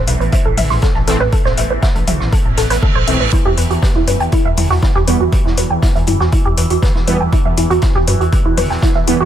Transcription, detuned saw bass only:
0, 0, Header, 1, 2, 480
1, 0, Start_track
1, 0, Key_signature, 1, "minor"
1, 0, Tempo, 500000
1, 1272, Time_signature, 4, 2, 24, 8
1, 8882, End_track
2, 0, Start_track
2, 0, Title_t, "Detuned saw bass"
2, 0, Program_c, 0, 39
2, 71, Note_on_c, 0, 35, 98
2, 146, Note_off_c, 0, 35, 0
2, 194, Note_on_c, 0, 33, 89
2, 266, Note_off_c, 0, 33, 0
2, 434, Note_on_c, 0, 33, 83
2, 506, Note_off_c, 0, 33, 0
2, 551, Note_on_c, 0, 33, 102
2, 626, Note_off_c, 0, 33, 0
2, 674, Note_on_c, 0, 33, 91
2, 745, Note_off_c, 0, 33, 0
2, 914, Note_on_c, 0, 33, 84
2, 986, Note_off_c, 0, 33, 0
2, 1032, Note_on_c, 0, 33, 99
2, 1106, Note_off_c, 0, 33, 0
2, 1155, Note_on_c, 0, 33, 95
2, 1226, Note_off_c, 0, 33, 0
2, 1395, Note_on_c, 0, 33, 90
2, 1466, Note_off_c, 0, 33, 0
2, 1512, Note_on_c, 0, 33, 99
2, 1587, Note_off_c, 0, 33, 0
2, 1636, Note_on_c, 0, 33, 91
2, 1706, Note_off_c, 0, 33, 0
2, 1876, Note_on_c, 0, 33, 87
2, 1947, Note_off_c, 0, 33, 0
2, 1993, Note_on_c, 0, 35, 97
2, 2067, Note_off_c, 0, 35, 0
2, 2116, Note_on_c, 0, 33, 86
2, 2186, Note_off_c, 0, 33, 0
2, 2356, Note_on_c, 0, 33, 81
2, 2426, Note_off_c, 0, 33, 0
2, 2473, Note_on_c, 0, 33, 96
2, 2547, Note_off_c, 0, 33, 0
2, 2596, Note_on_c, 0, 33, 92
2, 2666, Note_off_c, 0, 33, 0
2, 2836, Note_on_c, 0, 33, 84
2, 2906, Note_off_c, 0, 33, 0
2, 2952, Note_on_c, 0, 35, 97
2, 3027, Note_off_c, 0, 35, 0
2, 3076, Note_on_c, 0, 33, 90
2, 3147, Note_off_c, 0, 33, 0
2, 3316, Note_on_c, 0, 40, 88
2, 3386, Note_off_c, 0, 40, 0
2, 3433, Note_on_c, 0, 40, 103
2, 3507, Note_off_c, 0, 40, 0
2, 3556, Note_on_c, 0, 40, 92
2, 3626, Note_off_c, 0, 40, 0
2, 3796, Note_on_c, 0, 40, 87
2, 3866, Note_off_c, 0, 40, 0
2, 3912, Note_on_c, 0, 42, 98
2, 3987, Note_off_c, 0, 42, 0
2, 4036, Note_on_c, 0, 40, 90
2, 4106, Note_off_c, 0, 40, 0
2, 4276, Note_on_c, 0, 40, 84
2, 4346, Note_off_c, 0, 40, 0
2, 4392, Note_on_c, 0, 40, 96
2, 4467, Note_off_c, 0, 40, 0
2, 4516, Note_on_c, 0, 40, 94
2, 4586, Note_off_c, 0, 40, 0
2, 4756, Note_on_c, 0, 40, 85
2, 4826, Note_off_c, 0, 40, 0
2, 4874, Note_on_c, 0, 40, 95
2, 4948, Note_off_c, 0, 40, 0
2, 4996, Note_on_c, 0, 40, 90
2, 5067, Note_off_c, 0, 40, 0
2, 5236, Note_on_c, 0, 40, 88
2, 5307, Note_off_c, 0, 40, 0
2, 5352, Note_on_c, 0, 40, 101
2, 5427, Note_off_c, 0, 40, 0
2, 5476, Note_on_c, 0, 40, 89
2, 5547, Note_off_c, 0, 40, 0
2, 5716, Note_on_c, 0, 40, 90
2, 5786, Note_off_c, 0, 40, 0
2, 5833, Note_on_c, 0, 42, 96
2, 5907, Note_off_c, 0, 42, 0
2, 5956, Note_on_c, 0, 40, 93
2, 6026, Note_off_c, 0, 40, 0
2, 6196, Note_on_c, 0, 40, 82
2, 6266, Note_off_c, 0, 40, 0
2, 6312, Note_on_c, 0, 40, 98
2, 6387, Note_off_c, 0, 40, 0
2, 6436, Note_on_c, 0, 40, 90
2, 6506, Note_off_c, 0, 40, 0
2, 6676, Note_on_c, 0, 40, 83
2, 6746, Note_off_c, 0, 40, 0
2, 6792, Note_on_c, 0, 40, 100
2, 6867, Note_off_c, 0, 40, 0
2, 6916, Note_on_c, 0, 40, 93
2, 6986, Note_off_c, 0, 40, 0
2, 7156, Note_on_c, 0, 40, 90
2, 7226, Note_off_c, 0, 40, 0
2, 7273, Note_on_c, 0, 40, 95
2, 7347, Note_off_c, 0, 40, 0
2, 7396, Note_on_c, 0, 40, 94
2, 7466, Note_off_c, 0, 40, 0
2, 7636, Note_on_c, 0, 40, 87
2, 7706, Note_off_c, 0, 40, 0
2, 7752, Note_on_c, 0, 42, 99
2, 7827, Note_off_c, 0, 42, 0
2, 7875, Note_on_c, 0, 40, 86
2, 7946, Note_off_c, 0, 40, 0
2, 8115, Note_on_c, 0, 40, 86
2, 8186, Note_off_c, 0, 40, 0
2, 8233, Note_on_c, 0, 40, 103
2, 8307, Note_off_c, 0, 40, 0
2, 8356, Note_on_c, 0, 40, 93
2, 8426, Note_off_c, 0, 40, 0
2, 8596, Note_on_c, 0, 40, 82
2, 8666, Note_off_c, 0, 40, 0
2, 8713, Note_on_c, 0, 40, 99
2, 8787, Note_off_c, 0, 40, 0
2, 8837, Note_on_c, 0, 40, 93
2, 8882, Note_off_c, 0, 40, 0
2, 8882, End_track
0, 0, End_of_file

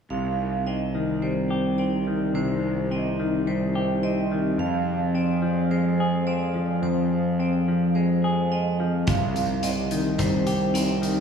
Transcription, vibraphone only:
0, 0, Header, 1, 2, 480
1, 0, Start_track
1, 0, Key_signature, -3, "minor"
1, 0, Tempo, 560224
1, 92, Time_signature, 4, 2, 24, 8
1, 9597, End_track
2, 0, Start_track
2, 0, Title_t, "Vibraphone"
2, 0, Program_c, 0, 11
2, 88, Note_on_c, 0, 77, 53
2, 570, Note_on_c, 0, 75, 47
2, 571, Note_off_c, 0, 77, 0
2, 1048, Note_on_c, 0, 72, 55
2, 1052, Note_off_c, 0, 75, 0
2, 1527, Note_on_c, 0, 74, 51
2, 1532, Note_off_c, 0, 72, 0
2, 2012, Note_off_c, 0, 74, 0
2, 2013, Note_on_c, 0, 72, 55
2, 2495, Note_off_c, 0, 72, 0
2, 2498, Note_on_c, 0, 75, 49
2, 2976, Note_on_c, 0, 72, 56
2, 2978, Note_off_c, 0, 75, 0
2, 3455, Note_on_c, 0, 75, 59
2, 3457, Note_off_c, 0, 72, 0
2, 3935, Note_on_c, 0, 77, 55
2, 3936, Note_off_c, 0, 75, 0
2, 4413, Note_on_c, 0, 74, 56
2, 4416, Note_off_c, 0, 77, 0
2, 4894, Note_on_c, 0, 72, 63
2, 4895, Note_off_c, 0, 74, 0
2, 5370, Note_on_c, 0, 74, 57
2, 5375, Note_off_c, 0, 72, 0
2, 5850, Note_on_c, 0, 72, 57
2, 5853, Note_off_c, 0, 74, 0
2, 6332, Note_off_c, 0, 72, 0
2, 6339, Note_on_c, 0, 74, 52
2, 6813, Note_on_c, 0, 72, 55
2, 6816, Note_off_c, 0, 74, 0
2, 7293, Note_off_c, 0, 72, 0
2, 7297, Note_on_c, 0, 75, 56
2, 7775, Note_off_c, 0, 75, 0
2, 7778, Note_on_c, 0, 77, 56
2, 8248, Note_on_c, 0, 75, 49
2, 8254, Note_off_c, 0, 77, 0
2, 8726, Note_on_c, 0, 72, 62
2, 8729, Note_off_c, 0, 75, 0
2, 9203, Note_on_c, 0, 74, 55
2, 9207, Note_off_c, 0, 72, 0
2, 9597, Note_off_c, 0, 74, 0
2, 9597, End_track
0, 0, End_of_file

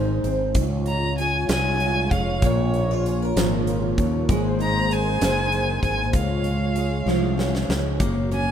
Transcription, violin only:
0, 0, Header, 1, 2, 480
1, 0, Start_track
1, 0, Key_signature, -5, "major"
1, 0, Tempo, 621118
1, 428, Time_signature, 6, 3, 24, 8
1, 6580, End_track
2, 0, Start_track
2, 0, Title_t, "Violin"
2, 0, Program_c, 0, 40
2, 674, Note_on_c, 0, 82, 87
2, 896, Note_off_c, 0, 82, 0
2, 912, Note_on_c, 0, 80, 87
2, 1135, Note_off_c, 0, 80, 0
2, 1154, Note_on_c, 0, 80, 97
2, 1634, Note_on_c, 0, 77, 83
2, 1645, Note_off_c, 0, 80, 0
2, 1888, Note_on_c, 0, 73, 77
2, 1899, Note_off_c, 0, 77, 0
2, 2422, Note_off_c, 0, 73, 0
2, 3573, Note_on_c, 0, 82, 94
2, 3804, Note_on_c, 0, 80, 99
2, 3816, Note_off_c, 0, 82, 0
2, 4509, Note_off_c, 0, 80, 0
2, 4514, Note_on_c, 0, 80, 82
2, 4731, Note_off_c, 0, 80, 0
2, 4765, Note_on_c, 0, 77, 86
2, 5924, Note_off_c, 0, 77, 0
2, 6452, Note_on_c, 0, 80, 88
2, 6580, Note_off_c, 0, 80, 0
2, 6580, End_track
0, 0, End_of_file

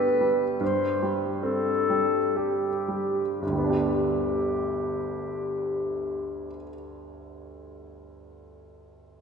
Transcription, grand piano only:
0, 0, Header, 1, 2, 480
1, 0, Start_track
1, 0, Key_signature, 1, "major"
1, 0, Tempo, 817439
1, 357, Time_signature, 3, 2, 24, 8
1, 845, Tempo, 928793
1, 1325, Tempo, 1050788
1, 1805, Tempo, 977199
1, 4651, End_track
2, 0, Start_track
2, 0, Title_t, "Grand piano"
2, 0, Program_c, 0, 0
2, 0, Control_c, 0, 64, 127
2, 0, Note_on_c, 0, 43, 40
2, 0, Note_on_c, 0, 55, 34
2, 0, Note_on_c, 0, 59, 37
2, 0, Note_on_c, 0, 67, 35
2, 122, Note_off_c, 0, 55, 0
2, 122, Note_on_c, 0, 55, 29
2, 259, Note_off_c, 0, 67, 0
2, 331, Note_off_c, 0, 43, 0
2, 355, Note_on_c, 0, 43, 38
2, 357, Note_off_c, 0, 55, 0
2, 370, Control_c, 0, 64, 0
2, 373, Note_off_c, 0, 59, 0
2, 485, Control_c, 0, 64, 127
2, 602, Note_on_c, 0, 55, 28
2, 841, Note_on_c, 0, 60, 32
2, 983, Note_off_c, 0, 55, 0
2, 1082, Note_on_c, 0, 55, 31
2, 1221, Note_off_c, 0, 60, 0
2, 1323, Note_on_c, 0, 67, 27
2, 1469, Note_off_c, 0, 55, 0
2, 1560, Note_on_c, 0, 55, 22
2, 1711, Note_off_c, 0, 67, 0
2, 1786, Note_off_c, 0, 43, 0
2, 1802, Note_off_c, 0, 55, 0
2, 1805, Note_on_c, 0, 31, 27
2, 1815, Control_c, 0, 64, 0
2, 1830, Note_on_c, 0, 38, 23
2, 1858, Note_on_c, 0, 55, 22
2, 1885, Note_on_c, 0, 59, 24
2, 1914, Note_on_c, 0, 62, 23
2, 1945, Control_c, 0, 64, 127
2, 1945, Note_on_c, 0, 67, 24
2, 3296, Note_off_c, 0, 31, 0
2, 3320, Note_off_c, 0, 38, 0
2, 3349, Note_off_c, 0, 55, 0
2, 3376, Note_off_c, 0, 59, 0
2, 3405, Note_off_c, 0, 62, 0
2, 3435, Note_off_c, 0, 67, 0
2, 4651, End_track
0, 0, End_of_file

